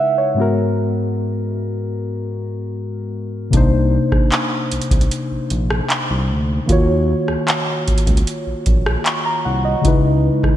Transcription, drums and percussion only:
3.53 kick, closed hi-hat
4.12 kick, cross-stick
4.32 clap, closed hi-hat
4.72 closed hi-hat
4.82 closed hi-hat
4.91 kick, closed hi-hat
5.01 closed hi-hat
5.11 closed hi-hat
5.50 closed hi-hat
5.70 cross-stick
5.90 clap, closed hi-hat
6.69 kick, closed hi-hat
7.28 cross-stick
7.48 clap, closed hi-hat
7.88 kick, closed hi-hat
7.98 closed hi-hat
8.07 kick, closed hi-hat
8.17 closed hi-hat
8.27 closed hi-hat
8.66 kick, closed hi-hat
8.86 cross-stick
9.06 clap, closed hi-hat
9.85 kick, closed hi-hat
10.44 kick, cross-stick

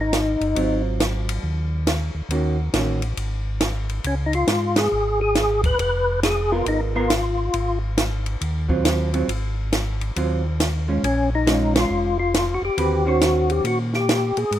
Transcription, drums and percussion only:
0.13 snare, hi-hat pedal, ride
0.41 ride
0.56 ride
1.00 snare, hi-hat pedal, ride
1.29 ride
1.87 snare, hi-hat pedal, ride
2.31 ride
2.74 snare, hi-hat pedal, ride
3.02 ride
3.17 ride
3.61 snare, hi-hat pedal, ride
3.89 ride
4.04 ride
4.33 ride
4.48 snare, hi-hat pedal, ride
4.76 snare, ride
5.35 snare, hi-hat pedal, ride
5.64 kick, ride
5.79 ride
6.23 snare, hi-hat pedal, ride
6.66 ride
7.10 snare, hi-hat pedal, ride
7.54 ride
7.98 snare, hi-hat pedal, ride
8.26 ride
8.41 ride
8.69 kick
8.85 snare, hi-hat pedal, ride
9.14 ride
9.29 ride
9.73 snare, hi-hat pedal, ride
10.01 ride
10.16 ride
10.60 snare, hi-hat pedal, ride
11.04 ride
11.47 snare, hi-hat pedal, ride
11.76 snare, ride
12.34 snare, hi-hat pedal, ride
12.78 ride
13.21 snare, hi-hat pedal, ride
13.50 ride
13.65 ride
13.93 snare
14.09 snare, hi-hat pedal, ride
14.37 ride
14.52 ride

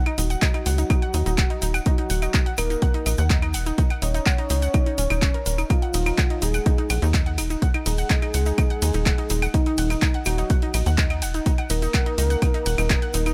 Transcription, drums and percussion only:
0.06 closed hi-hat, claves
0.18 open hi-hat, shaker
0.30 closed hi-hat, shaker
0.42 kick, clap, closed hi-hat, shaker
0.54 closed hi-hat, claves
0.66 open hi-hat, shaker
0.78 closed hi-hat, shaker
0.90 kick, closed hi-hat, claves, shaker
1.02 closed hi-hat
1.14 open hi-hat, shaker
1.26 closed hi-hat, shaker
1.38 kick, clap, closed hi-hat, claves, shaker
1.50 closed hi-hat
1.62 open hi-hat, shaker
1.74 closed hi-hat, claves, shaker
1.86 kick, closed hi-hat, shaker
1.98 closed hi-hat
2.10 open hi-hat, shaker
2.22 closed hi-hat, claves, shaker
2.34 kick, clap, closed hi-hat, shaker
2.46 closed hi-hat
2.58 open hi-hat, claves, shaker
2.70 closed hi-hat, shaker
2.82 kick, closed hi-hat, shaker
2.94 closed hi-hat
3.06 open hi-hat, claves, shaker
3.17 closed hi-hat, shaker
3.30 kick, clap, closed hi-hat, shaker
3.42 closed hi-hat, claves
3.54 open hi-hat, shaker
3.66 closed hi-hat, shaker
3.78 kick, closed hi-hat, shaker
3.90 closed hi-hat, claves
4.02 open hi-hat, shaker
4.14 closed hi-hat, shaker
4.26 kick, clap, closed hi-hat, claves, shaker
4.38 closed hi-hat
4.50 open hi-hat, shaker
4.62 closed hi-hat, shaker
4.74 kick, closed hi-hat, claves, shaker
4.86 closed hi-hat
4.98 open hi-hat, shaker
5.10 closed hi-hat, claves, shaker
5.22 kick, clap, closed hi-hat, shaker
5.34 closed hi-hat
5.46 open hi-hat, shaker
5.58 closed hi-hat, claves, shaker
5.70 kick, closed hi-hat, claves, shaker
5.82 closed hi-hat
5.94 open hi-hat, ride, shaker
6.06 closed hi-hat, claves, shaker
6.18 kick, clap, closed hi-hat, shaker
6.30 closed hi-hat
6.42 open hi-hat, ride, shaker
6.54 closed hi-hat, claves, shaker
6.66 kick, closed hi-hat, shaker
6.78 closed hi-hat
6.90 open hi-hat, ride, claves, shaker
7.02 closed hi-hat, shaker
7.14 kick, clap, closed hi-hat, shaker
7.26 closed hi-hat
7.38 open hi-hat, ride, claves, shaker
7.50 closed hi-hat, shaker
7.62 kick, closed hi-hat, shaker
7.74 closed hi-hat, claves
7.86 open hi-hat, ride, shaker
7.98 closed hi-hat, shaker
8.10 kick, clap, closed hi-hat, shaker
8.22 closed hi-hat, claves
8.34 open hi-hat, ride, shaker
8.46 closed hi-hat, shaker
8.58 kick, closed hi-hat, claves, shaker
8.70 closed hi-hat
8.82 open hi-hat, ride, shaker
8.93 closed hi-hat, shaker
9.06 kick, clap, closed hi-hat, claves, shaker
9.18 closed hi-hat
9.30 open hi-hat, ride, shaker
9.42 closed hi-hat, claves, shaker
9.54 kick, closed hi-hat, shaker
9.66 closed hi-hat
9.78 open hi-hat, ride, shaker
9.90 closed hi-hat, claves, shaker
10.02 kick, clap, closed hi-hat, shaker
10.14 closed hi-hat
10.25 open hi-hat, ride, claves, shaker
10.38 closed hi-hat, shaker
10.50 kick, closed hi-hat, shaker
10.62 closed hi-hat
10.74 open hi-hat, ride, claves, shaker
10.86 closed hi-hat, shaker
10.97 kick, clap, closed hi-hat, shaker
11.10 closed hi-hat, claves
11.22 open hi-hat, ride, shaker
11.34 closed hi-hat, shaker
11.46 kick, closed hi-hat, shaker
11.58 closed hi-hat, claves
11.70 open hi-hat, ride, shaker
11.82 closed hi-hat, shaker
11.94 kick, clap, closed hi-hat, claves, shaker
12.06 closed hi-hat
12.18 open hi-hat, ride, shaker
12.30 closed hi-hat, shaker
12.42 kick, closed hi-hat, claves, shaker
12.54 closed hi-hat
12.66 open hi-hat, ride, shaker
12.78 closed hi-hat, claves, shaker
12.90 kick, clap, closed hi-hat, shaker
13.02 closed hi-hat
13.14 open hi-hat, ride, shaker
13.26 closed hi-hat, claves, shaker

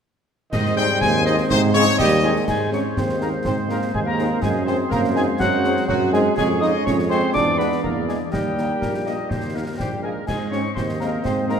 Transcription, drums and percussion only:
0.53 concert bass drum, snare, crash
0.66 snare
0.78 snare
1.01 concert bass drum, snare
1.26 snare
1.38 snare
1.51 concert bass drum, snare
1.75 snare
1.87 snare
1.99 concert bass drum, snare
2.36 snare
2.48 concert bass drum, snare, crash
2.72 snare
2.97 concert bass drum, snare
3.09 snare
3.21 snare
3.45 concert bass drum, snare
3.70 snare
3.82 snare
3.94 concert bass drum
4.19 snare
4.43 concert bass drum, snare
4.67 snare
4.91 concert bass drum, snare
5.04 snare
5.16 snare
5.40 concert bass drum, snare
5.64 snare
5.77 snare
5.89 concert bass drum
6.13 snare
6.38 concert bass drum, snare, crash
6.62 snare
6.87 concert bass drum, snare
6.99 snare
7.11 snare
7.36 concert bass drum, snare
7.60 snare
7.72 snare
7.84 concert bass drum
8.09 snare
8.33 concert bass drum, snare
8.58 snare
8.82 concert bass drum, snare
8.94 snare
9.06 snare
9.31 concert bass drum, snare
9.80 concert bass drum, snare
10.28 concert bass drum, snare, crash
10.53 snare
10.77 concert bass drum, snare
10.89 snare
11.01 snare
11.25 concert bass drum, snare
11.50 snare

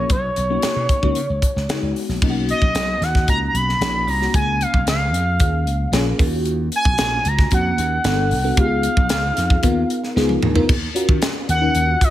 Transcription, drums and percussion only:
0.10 kick, closed hi-hat
0.36 closed hi-hat
0.62 snare, closed hi-hat
0.89 kick, closed hi-hat
1.03 kick
1.15 closed hi-hat
1.42 kick, closed hi-hat
1.57 snare
1.69 snare, closed hi-hat
1.96 open hi-hat
2.10 snare
2.22 kick, crash
2.49 closed hi-hat
2.62 kick
2.75 snare, closed hi-hat
3.02 snare, closed hi-hat
3.15 kick, snare
3.28 kick, closed hi-hat
3.55 closed hi-hat
3.69 snare
3.81 snare, closed hi-hat
4.08 open hi-hat
4.22 snare
4.34 kick, closed hi-hat
4.61 closed hi-hat
4.74 kick
4.87 snare, closed hi-hat
5.14 closed hi-hat
5.40 kick, closed hi-hat
5.67 closed hi-hat
5.93 snare, closed hi-hat
6.19 kick, open hi-hat
6.45 closed hi-hat
6.72 closed hi-hat
6.85 kick
6.98 snare, closed hi-hat
7.25 closed hi-hat
7.39 kick, snare
7.51 kick, closed hi-hat
7.78 closed hi-hat
8.04 snare, closed hi-hat
8.31 open hi-hat
8.57 kick, closed hi-hat
8.83 closed hi-hat
8.97 kick
9.09 snare, closed hi-hat
9.37 snare, closed hi-hat
9.50 kick
9.63 kick, closed hi-hat
9.90 closed hi-hat
10.04 snare
10.17 snare
10.29 high tom
10.43 mid tom
10.56 floor tom
10.69 kick, crash
10.96 closed hi-hat
11.09 kick
11.22 snare, closed hi-hat
11.49 closed hi-hat
11.75 closed hi-hat
12.01 kick, closed hi-hat

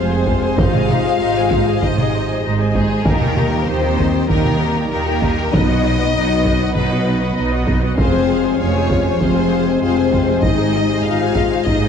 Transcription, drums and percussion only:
0.27 taiko
0.58 taiko
0.74 taiko mid
0.89 taiko mid
1.51 taiko
1.82 taiko
1.98 taiko mid
2.75 taiko
3.05 taiko
3.21 taiko mid
3.37 taiko mid
3.99 taiko
4.30 taiko
4.45 taiko mid
5.22 taiko
5.53 taiko
6.45 taiko
6.75 taiko
7.67 taiko
7.98 taiko
8.90 taiko
9.21 taiko
10.13 taiko
10.43 taiko
11.35 taiko
11.66 taiko

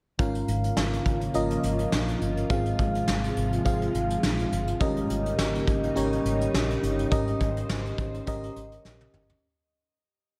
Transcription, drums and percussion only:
0.19 kick, closed hi-hat
0.35 closed hi-hat
0.48 closed hi-hat
0.64 closed hi-hat
0.77 snare
0.93 closed hi-hat
1.05 kick, closed hi-hat
1.21 closed hi-hat
1.34 closed hi-hat
1.50 closed hi-hat
1.63 closed hi-hat
1.79 closed hi-hat
1.92 snare
2.08 closed hi-hat
2.21 closed hi-hat
2.37 closed hi-hat
2.50 kick, closed hi-hat
2.66 closed hi-hat
2.79 kick, closed hi-hat
2.95 closed hi-hat
3.08 snare
3.24 closed hi-hat
3.36 closed hi-hat
3.52 closed hi-hat
3.65 kick, closed hi-hat
3.82 closed hi-hat
3.95 closed hi-hat
4.10 closed hi-hat
4.23 snare
4.39 closed hi-hat
4.52 closed hi-hat
4.67 closed hi-hat
4.80 kick, closed hi-hat
4.96 closed hi-hat
5.10 closed hi-hat
5.26 closed hi-hat
5.39 snare
5.55 closed hi-hat
5.68 kick, closed hi-hat
5.83 closed hi-hat
5.96 closed hi-hat
6.13 closed hi-hat
6.25 closed hi-hat
6.41 closed hi-hat
6.54 snare
6.70 closed hi-hat
6.83 closed hi-hat
6.99 closed hi-hat
7.12 kick, closed hi-hat
7.27 closed hi-hat
7.41 kick, closed hi-hat
7.57 closed hi-hat
7.69 snare
7.86 closed hi-hat
7.98 kick, closed hi-hat
8.14 closed hi-hat
8.27 kick, closed hi-hat
8.43 closed hi-hat
8.56 closed hi-hat
8.72 closed hi-hat
8.85 snare
9.01 high tom
9.14 mid tom
9.30 floor tom

